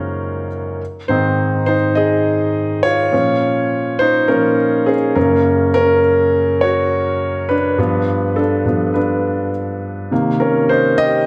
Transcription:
Already playing: F#2 C#3 G#3 A#3 C#4 D#4 F4 A#4 C5
1.08 G#2 D#3 C4 D#4 C5
1.66 D#4 C5
1.95 G#4 D#5
2.83 F4 C#5
3.12 A#2 F3 C#4
3.99 D#4 C5
4.28 A#2 F3 C#4 A#4
4.86 C#4 G#4
5.15 F#2 C#3 A#3 C#4 A#4
5.74 C#4 A#4
6.61 F#4 C#5
7.49 D4 B4
7.78 G2 F3 B3
8.36 D4 A4
8.66 G2 F3 B3
8.94 D4 B4
10.11 C3 D#3 A#3
10.40 C#4 A#4
10.69 D#4 C5
10.98 G4 D#5

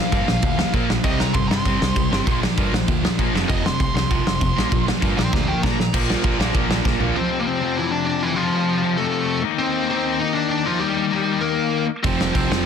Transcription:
Already playing: A#2 F3 A#3 F5
0.12 G2 A#2 F3 A#3, kick, crash
0.27 A#1 A#2 F3, snare
0.42 D2 A#2 F3, kick, crash
0.58 A#2 F3, snare
0.73 A#2 F3 A#3, kick, crash
0.89 A#1 A#2 F3, snare
1.03 C2 C3 G3 C4 D#5, kick, crash
1.20 C3 G3 A#5, snare
1.34 G1 C3 G3 C6, kick, crash
1.48 G2 C3 G3 C6, snare
1.65 G1 C3 G3 C4, kick, crash
1.81 C2 C3 G3, snare
1.96 C2 C3 G3, kick, crash
2.11 G1 C3 G3 C4, snare
2.26 A#1 A#2 F3 A#3, kick, crash
2.43 A#2 F3, snare
2.58 G2 A#2 F3 A#3, kick, crash
2.73 A#1 A#2 F3, snare
2.88 D2 A#2 F3, kick, crash
3.03 A#2 F3, snare
3.19 A#2 F3 A#3, kick, crash
3.34 F1 F2 C3 F3, snare
3.49 F1 F2 C3 F3 D#5, kick, crash
3.64 F2 C3 C6, snare
3.79 C2 F2 C3 C6, kick, crash
3.94 C2 F2 C3 C6, snare
4.10 C2 F2 C3 F3, kick, crash
4.26 F1 F2 C3, snare
4.41 F1 F2 C3, kick, crash
4.56 A#1 A#2 F3 A#3, snare
4.71 A#1 A#2 F3, kick, crash
4.86 A#2 F3, snare
5.00 G2 A#2 F3 A#3, kick, crash
5.17 A#1 A#2 F3 G5 C6, snare
5.31 D2 A#2 F3 D5 A#5, kick, snare
5.47 A#2 F3 A#4 G5
5.63 A#2 F3 A#3 A#5, kick, snare
5.79 A#2 F3, snare
5.94 A#1 A#2 F3 A#3, kick, crash
6.10 snare
6.24 A#1 A#2 F3 A#3, kick, ride
6.39 A#1 A#2 F3 A#3, snare
6.54 A#1 A#2 F3 A#3, kick, ride
6.69 A#1, snare
6.85 A#1 A#2 F3 A#3, kick, snare
7.00 A#1 A#2 F3 A#3, floor tom
7.15 F2 C3 F3 C4 C5
7.39 A#3
7.47 C4 C5
7.61 F2 C3 F3
7.77 E3 E4
7.91 D4 D5
8.06 D4 D5
8.23 E3 E4
8.36 F2 C3 F3 F4
8.83 F2 C3 F3
8.97 A3 A4
9.43 D#3 A#3 D#4
9.59 C4 C5
9.89 D#3 A#3 C4 D#4 C5
10.19 D#4 D#5
10.34 D4 D5
10.50 D4 D5
10.65 D#3 F3 A#3 D#4 F4
10.80 G3 G4
11.12 D#3 A#3 D#4
11.41 A#3 A#4
12.03 F1 F2 C3 F3 C4 C5, kick, crash
12.21 snare
12.33 C2 C4 C5, kick, crash
12.49 F1 F2 C3 F3, snare

